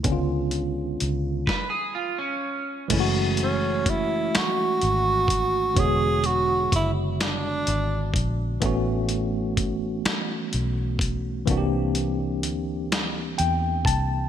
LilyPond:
<<
  \new Staff \with { instrumentName = "Clean electric guitar" } { \time 6/8 \key fis \minor \tempo 4. = 42 r4. b'16 gis'16 eis'16 cis'8. | r2. | r2. | r2. |
r2. | }
  \new Staff \with { instrumentName = "Tenor saxophone" } { \time 6/8 \key fis \minor r2. | r8 cis'8 e'8 fis'4. | gis'8 fis'8 e'8 d'4 r8 | r2. |
r2. | }
  \new Staff \with { instrumentName = "Tine electric piano" } { \time 6/8 \key fis \minor r2. | r2. | r2. | r2. |
r2 g''8 a''8 | }
  \new Staff \with { instrumentName = "Tine electric piano" } { \time 6/8 \key fis \minor <d gis b cis' d' eis'>4. r4. | <e gis a cis' e' fis'>2. | <d g gis b fis' cis''>2. | <e a b cis' fis'>2. |
<e bes c' d' fis' g'>2. | }
  \new Staff \with { instrumentName = "Fingered electric bass" } { \clef bass \time 6/8 \key fis \minor cis,4 cis,8 r4. | fis,,4. r8 gis,,4 | e,,4 fis,,4 gis,,8 ais,,8 | a,,4. r8 b,,4 |
c,4 d,4 e,8 c,8 | }
  \new DrumStaff \with { instrumentName = "Drums" } \drummode { \time 6/8 <hh bd>8 hh8 hh8 <bd sn>4. | <cymc hh bd>8 hh8 <hh bd>8 <hh sn>8 hh8 <hh bd>8 | <hh bd>8 hh8 <hh bd>8 <hh sn>8 hh8 <hh bd>8 | <hh bd>8 hh8 <hh bd>8 <hh sn>8 hh8 <hh bd>8 |
<hh bd>8 hh8 hh8 <hh sn>8 hh8 <hh bd>8 | }
>>